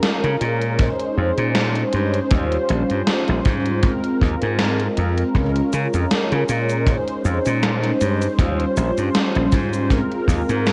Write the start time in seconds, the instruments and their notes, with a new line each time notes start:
Already playing: analog polysynth G#3 C#4 F4 A#4
0.03 snare, closed hi-hat
0.24 slap bass C#3, closed hi-hat
0.41 slap bass A#2, closed hi-hat
0.61 closed hi-hat
0.78 analog polysynth G#3 C#4 D#4 C5, kick, closed hi-hat
0.99 closed hi-hat
1.18 slap bass F2
1.38 slap bass A#2, closed hi-hat
1.55 snare, closed hi-hat
1.75 closed hi-hat
1.93 slap bass G2, closed hi-hat
2.14 closed hi-hat
2.30 slap bass D#2, analog polysynth G3 C#4 F4 C5, kick, closed hi-hat
2.52 closed hi-hat
2.69 slap bass A#1, closed hi-hat
2.90 slap bass G2, closed hi-hat
3.07 snare, closed hi-hat
3.28 slap bass A#1, closed hi-hat
3.45 slap bass G#2, kick, closed hi-hat
3.66 closed hi-hat
3.81 analog polysynth G#3 C4 F4 A#4, kick, closed hi-hat
4.04 closed hi-hat
4.21 slap bass D#2, kick
4.42 slap bass G#2, closed hi-hat
4.59 snare, closed hi-hat
4.80 closed hi-hat
4.97 slap bass F2, closed hi-hat
5.18 closed hi-hat
5.33 slap bass C#2, analog polysynth G#3 C#4 F4 A#4, kick, closed hi-hat, cabasa
5.56 closed hi-hat
5.73 slap bass C#3, closed hi-hat, cabasa
5.94 slap bass F2, closed hi-hat, cabasa
6.11 snare, closed hi-hat, cabasa
6.32 slap bass C#3, closed hi-hat
6.49 slap bass A#2, closed hi-hat, cabasa
6.70 closed hi-hat, cabasa
6.85 analog polysynth G#3 C#4 D#4 C5, kick, closed hi-hat, cabasa
7.08 closed hi-hat
7.25 slap bass F2, cabasa
7.46 slap bass A#2, closed hi-hat, cabasa
7.63 snare, closed hi-hat, cabasa
7.83 closed hi-hat
8.01 slap bass G2, closed hi-hat, cabasa
8.22 closed hi-hat, cabasa
8.37 slap bass D#2, analog polysynth G3 C#4 F4 C5, kick, closed hi-hat, cabasa
8.60 closed hi-hat
8.77 slap bass A#1, closed hi-hat, cabasa
8.98 slap bass G2, closed hi-hat, cabasa
9.15 snare, closed hi-hat, cabasa
9.35 slap bass A#1, closed hi-hat
9.52 slap bass G#2, kick, closed hi-hat, cabasa
9.74 closed hi-hat, cabasa
9.89 analog polysynth G#3 C4 F4 A#4, kick, closed hi-hat, cabasa
10.12 closed hi-hat
10.28 slap bass D#2, kick, cabasa
10.49 slap bass G#2, closed hi-hat, cabasa
10.67 snare, closed hi-hat, cabasa